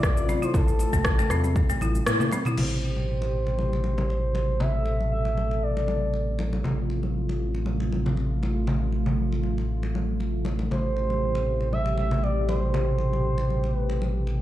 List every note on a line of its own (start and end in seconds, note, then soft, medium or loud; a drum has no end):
0.00 0.35 A1 loud
0.00 2.54 C3 medium
0.00 2.54 A3 medium
0.00 2.54 F4 medium
0.00 0.45 D5 loud
0.00 kick loud
0.00 cross-stick loud
0.00 muted conga soft
0.00 shaker medium
0.17 shaker soft
0.29 0.36 C4 medium
0.29 muted conga medium
0.29 high conga medium
0.29 shaker medium
0.42 0.49 E4 medium
0.42 0.55 C5 medium
0.42 shaker soft
0.54 0.86 A1 loud
0.54 2.04 A4 loud
0.54 kick loud
0.54 muted conga medium
0.54 low conga loud
0.54 shaker medium
0.68 shaker soft
0.79 muted conga soft
0.79 shaker medium
0.93 1.24 A1 medium
0.93 1.04 A3 loud
0.93 kick medium
0.93 high conga medium
0.93 low conga medium
0.93 shaker medium
1.05 kick loud
1.05 cross-stick loud
1.05 shaker medium
1.19 1.25 A3 loud
1.19 muted conga medium
1.19 shaker soft
1.30 1.62 E2 medium
1.30 1.38 C4 medium
1.30 cross-stick medium
1.30 high conga medium
1.30 shaker medium
1.44 1.55 C4 medium
1.44 muted conga soft
1.44 shaker soft
1.56 kick loud
1.56 shaker soft
1.70 2.00 A1 loud
1.70 1.76 A3 medium
1.70 muted conga soft
1.70 shaker medium
1.81 1.89 E4 medium
1.81 high conga medium
1.81 shaker soft
1.95 shaker soft
2.07 2.38 A2 medium
2.07 cross-stick loud
2.07 high tom medium
2.07 muted conga soft
2.07 shaker medium
2.20 high tom medium
2.20 low conga medium
2.20 shaker medium
2.31 2.40 C4 medium
2.31 muted conga medium
2.31 high conga medium
2.31 shaker medium
2.45 2.52 E4 medium
2.45 mid tom medium
2.45 high conga medium
2.45 shaker soft
2.57 6.62 A1 medium
2.57 6.60 B2 medium
2.57 10.67 C3 medium
2.57 14.42 A3 medium
2.57 4.59 G4 medium
2.57 4.62 C5 medium
2.57 crash medium
2.57 muted conga medium
2.57 low conga loud
2.82 muted conga soft
2.96 high conga medium
3.22 muted conga soft
3.47 muted conga soft
3.59 high conga medium
3.73 muted conga soft
3.84 high conga medium
3.98 high conga medium
3.98 low conga medium
4.10 muted conga soft
4.35 muted conga soft
4.35 high conga medium
4.60 6.62 A4 medium
4.60 5.11 E5 loud
4.60 muted conga soft
4.60 low conga medium
4.86 muted conga soft
5.01 high conga medium
5.12 5.65 E5 loud
5.25 muted conga soft
5.38 high conga medium
5.51 muted conga soft
5.63 6.39 D5 medium
5.77 muted conga soft
5.88 high conga medium
6.14 muted conga soft
6.39 muted conga soft
6.39 high conga medium
6.53 high conga medium
6.64 10.69 A1 medium
6.64 10.67 F3 medium
6.64 10.67 F4 medium
6.64 muted conga soft
6.64 low conga medium
6.90 muted conga soft
7.03 high conga medium
7.29 muted conga soft
7.55 muted conga soft
7.66 high conga medium
7.80 muted conga soft
7.92 high conga medium
8.06 high conga medium
8.06 low conga medium
8.17 muted conga soft
8.43 muted conga soft
8.43 high conga medium
8.67 muted conga soft
8.67 low conga medium
8.92 muted conga soft
9.06 high conga medium
9.06 low conga medium
9.32 muted conga soft
9.43 high conga medium
9.58 muted conga soft
9.83 muted conga soft
9.95 high conga medium
10.20 muted conga soft
10.45 muted conga soft
10.45 high conga medium
10.59 high conga medium
10.71 14.42 A1 medium
10.71 14.42 B2 medium
10.71 14.42 C3 medium
10.71 14.42 G4 medium
10.71 11.69 C5 loud
10.71 muted conga soft
10.71 low conga medium
10.97 muted conga soft
11.10 high conga medium
11.35 muted conga soft
11.61 muted conga soft
11.72 11.96 E5 loud
11.72 high conga medium
11.86 muted conga soft
11.98 12.25 E5 loud
11.98 high conga medium
12.11 high conga medium
12.11 low conga medium
12.23 12.48 D5 loud
12.23 muted conga soft
12.48 13.75 C5 medium
12.48 muted conga soft
12.48 high conga medium
12.74 muted conga soft
12.74 low conga medium
12.98 muted conga soft
13.13 high conga medium
13.38 muted conga soft
13.50 high conga medium
13.64 muted conga soft
13.75 14.42 B4 medium
13.90 muted conga soft
14.02 high conga medium
14.27 muted conga soft